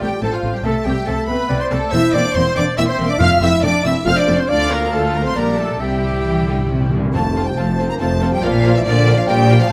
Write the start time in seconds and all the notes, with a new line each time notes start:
Already playing: D5
0.00 A1 A2 G3 A3 C4 G4 G5
0.21 A1 A2 A3 C4 A4 C5 A5
0.30 F3 F4 F5
0.43 A1 A2 A3 C4
0.52 G3 G4 G5
0.63 C2 C3 A3 C4 A4 E5 A5
0.85 C2 C3 G3 A3 C4 G4 G5
1.06 C2 C3 A3 C4 A4 E5 A5
1.27 C2 C3 A3 B3 C4 B4 B5
1.49 C2 C3 A3 C4 D5
1.60 C4 C5 C6
1.70 C2 C3 A3 C4 A4 A5
1.91 E1 E2 A#3 C4 E4 C5 E5 E6
2.12 E1 E2 A#3 C4 D4 D5 D6
2.33 E1 E2 A#3 C4 C5 C6
2.55 E1 E2 A#3 C4 D4 D5 D6
2.76 E1 E2 A#3 C4 E4 E5 E6
2.87 C4 C5 C6
2.98 E1 E2 A#3 C4
3.09 D4 D5 D6
3.19 F1 F2 A3 C4 F4 F5 F6
3.41 F1 F2 A3 C4 E4 E5 E6
3.62 F1 F2 A3 C4 D4 D5 D6
3.83 F1 F2 A3 C4 E4 E5 E6
4.05 F1 F2 A3 C4 F4 C5 F5 F6
4.16 D4 D5 D6
4.27 F1 F2 A3 C4
4.37 C4 C5 C6
4.48 D2 A3 D4 F4 D5 F5 D6
4.70 A#3 A#4 A#5
4.91 A3 F4 A4 A5
5.13 A#3 A#4 A#5
5.24 C4 C5 C6
5.35 A#1 A#2 G3 A#3 D4 A#4 D5 A#5
5.56 A3 A4 A5
5.80 C2 C3 G3 E4 G4 E5 G5
5.88 C3
5.96 C3
6.04 C3
6.11 C3
6.20 C3
6.25 C3 E3
6.35 C3
6.43 C3
6.47 C3 D3
6.59 C3
6.67 C3
6.74 C3
6.81 C3
6.89 C3 D3
6.97 C3
7.05 C3
7.13 F1 F2 F3 A3 C4 F4 A4 C5 A5
7.35 C4 F4 A4 C5
7.46 G3 G5
7.57 F1 F2 A3 C4 F4 A4 C5 A5
7.78 C4 F4 A4 C5
7.89 A#3 A#5
8.00 F1 F2 A3 C4 F4 A4 C5 A5
8.21 C4 F4 A4 C5
8.32 G3 G5
8.42 A#1 A#2 F3 A#3 F4 A#4 D5 F5
8.64 A#3 F4 A#4 D5
8.73 E3 E5
8.85 A#1 A#2 D3 A#3 F4 A#4 D5
9.06 A#3 F4 A#4 D5
9.17 F3 F5
9.27 A#1 A#2 G3 A#3 F4 A#4 D5 G5
9.49 A#3 F4 A#4 D5
9.60 F3 F5
9.69 C5